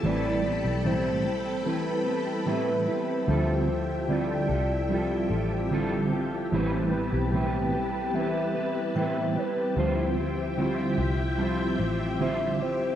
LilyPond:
<<
  \new Staff \with { instrumentName = "String machine" } { \time 4/4 \key a \minor \tempo 4 = 74 << { <g'' a'' b''>1 | <e'' g''>1 | <b' a''>1 | <e'' g''>1 | } \\ { a'1 | g'1~ | g'1 | g'1 | } >> }
  \new Staff \with { instrumentName = "Vibraphone" } { \time 4/4 \key a \minor r2. e''4~ | e''8 r2. r8 | r2. g''4~ | g''8 r2. r8 | }
  \new Staff \with { instrumentName = "Soft synth lead" } { \time 4/4 \key a \minor d''4 c''4 b'2 | c''4 d''2~ d''8 r8 | r4 g''4 e''4 e''8 b'8 | c''4. r4. e''8 c''8 | }
  \new Staff \with { instrumentName = "Clean electric guitar" } { \time 4/4 \key a \minor e16 c'16 b16 g'16 c'8 g'16 c'16 e16 c'16 b16 g'16 c'16 b16 g'16 c'16 | f16 e'16 c'16 g'16 e'16 c'16 g'16 e'16 f16 e'16 c'16 g'16 e'16 c'16 g'16 e'16 | e16 c'16 b16 g'16 c'16 b16 g'16 c'16 e16 c'16 b16 g'16 c'16 b16 g'16 c'16 | f16 e'16 c'16 g'16 e'16 c'16 g'16 e'16 f16 e'16 c'16 g'16 e'16 c'16 g'16 e'16 | }
  \new Staff \with { instrumentName = "Clean electric guitar" } { \time 4/4 \key a \minor <a, e g c' e' b'>8 <g c' e' b'>8 <a, e g c' e'>8 <g c' e'>8 <g c' e' b'>8 <g c' e' b'>8 <a, e g c' e' b'>8 <g c' e' b'>8 | <d g c' f' a'>8 <c' f' a'>8 <d g c' f' a'>8 <c' f' a'>8 <g c' f' a'>8 <c' f' a'>8 <d g c' f' a'>8 <c' f' a'>8 | <a, e g c' e' b'>8 <g c' e' b'>8 <a, e g c' e' b'>8 <g c' e' b'>8 <g c' e' b'>8 <g c' e' b'>8 <a, e g c' e' b'>8 <g c' e' b'>8 | <d g c' f' c''>8 <c' f' c''>8 <d g c' f' c''>8 <c' f' c''>8 <g c' f' c''>8 <c' f' c''>8 <d g c' f' c''>8 <c' f' c''>8 | }
  \new Staff \with { instrumentName = "Picked electric bass" } { \clef bass \time 4/4 \key a \minor a,,8. b,,2.~ b,,16 | d,4. c,4 a,,4. | a,,8. b,,2.~ b,,16 | d,4. c,4 a,,4. | }
>>